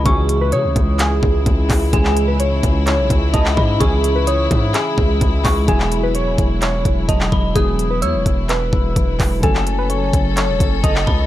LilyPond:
<<
  \new Staff \with { instrumentName = "Synth bell" } { \time 4/4 \key cis \minor \tempo 4 = 128 cis'''4 dis'''2 r4 | gis''2. a''8 b''8 | cis'''4 dis'''2~ dis'''8 cis'''8 | gis''2. a''8 b''8 |
dis'''4 e'''2 r4 | gis''2. a''8 b''8 | }
  \new Staff \with { instrumentName = "Synth keys" } { \time 4/4 \key cis \minor gis'8. b'16 cis''4 gis'2 | gis'8. b'16 cis''4 cis''4 dis''4 | gis'8. b'16 cis''4 gis'2 | gis'8. b'16 cis''4 cis''4 dis''4 |
gis'8. b'16 cis''4 b'2 | a'8. b'16 cis''4 cis''4 dis''4 | }
  \new Staff \with { instrumentName = "String section" } { \time 4/4 \key cis \minor << { <gis e'>1~ | <gis e'>1~ | <gis e'>1~ | <gis e'>1~ |
<gis e'>1 | <cis' a'>1 | } \\ { cis1~ | cis1~ | cis1 | fis1~ |
fis1~ | fis1 | } >> }
  \new Staff \with { instrumentName = "Felt piano" } { \clef bass \time 4/4 \key cis \minor <cis e gis cis' fis'>1 | <cis e gis cis' e'>1 | <cis e gis cis' e'>1 | <e fis gis b e'>1 |
<e fis gis b e'>1 | <cis fis a cis' fis'>1 | }
  \new Staff \with { instrumentName = "808-style bass" } { \clef bass \time 4/4 \key cis \minor cis,4 cis16 cis,16 cis,4 cis,8 cis,8 cis,8 | cis,4. cis,8. b,,16 cis,8 cis,8 gis,8 | cis,4. gis,8 r8 cis,8 cis,8 cis,8 | e,,4. e,,4 e,,8 e,,8 e,,8 |
e,,4 e,16 e,,16 e,,4 e,,8 e,,8 e,,8 | fis,,4. fis,,8. e,,16 fis,,8 fis,,8 cis,8 | }
  \new DrumStaff \with { instrumentName = "Drums" } \drummode { \time 4/4 <hh bd>8 hh8 hh8 <hh bd>8 <hc hh>8 bd8 <hh bd>8 <hc hho bd>8 | <hh bd>16 hc16 hh8 hh8 <hh bd>8 <hc hh>8 <hh bd>8 <hh bd>16 hc16 bd8 | <hh bd>8 hh8 hh8 <hh bd>8 <hc hh>8 bd8 <hh bd>8 <hc hho bd>8 | <hh bd>16 hc16 hh8 hh8 <hh bd>8 <hc hh>8 <hh bd>8 <hh bd>16 hc16 bd8 |
<hh bd>8 hh8 hh8 <hh bd>8 <hc hh>8 bd8 <hh bd>8 <hc hho bd>8 | <hh bd>16 hc16 hh8 hh8 <hh bd>8 <hc hh>8 <hh bd>8 <hh bd>16 hc16 bd8 | }
>>